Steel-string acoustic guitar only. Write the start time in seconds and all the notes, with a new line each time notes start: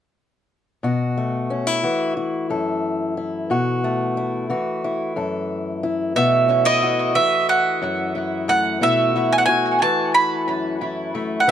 0.83 B2 F#4
1.17 A3
1.50 C#4
1.67 E4
1.83 E3 F#4
2.17 E4
2.50 F#2 A4
3.17 E4
3.50 B2 F#4
3.84 A3
4.17 E4
4.50 E3 F#4
4.84 E4
5.16 F#2 A4
5.83 E4
6.16 B2 A3 E4 F#4
6.48 C#4
6.65 E4
6.83 F#4
7.15 E3
7.81 F#2
8.15 E4
8.48 A3
8.81 B2 A3 E4 F#4
9.16 E4
9.48 F#4
9.82 E3
10.47 F#2
10.81 E4
11.15 A3
11.47 E3